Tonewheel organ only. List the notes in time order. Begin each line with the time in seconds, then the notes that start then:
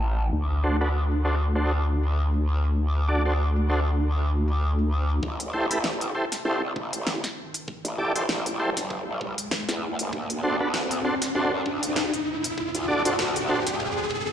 0.64 D4 F#4 A4 C5
0.81 D4 F#4 A4 B4
1.25 D4 F#4 A4 C5
1.55 D4 F#4 A4 C5
3.08 D4 F#4 A4 D5
3.25 D4 F#4 A4 C5
3.70 D4 F#4 A4 C5
5.53 E4 G4 A4 C5
5.71 E4 G4 A4 B4
6.15 E4 G4 A4 C5
6.45 E4 G4 A4 C5
7.98 E4 G4 A4 D5
8.16 E4 G4 A4 C5
8.60 E4 G4 A4 C5
10.43 D4 F#4 A4 C5
10.60 D4 F#4 A4 B4
11.05 D4 F#4 A4 C5
11.35 D4 F#4 A4 C5
12.88 D4 F#4 A4 D5
13.05 D4 F#4 A4 C5
13.49 D4 F#4 A4 C5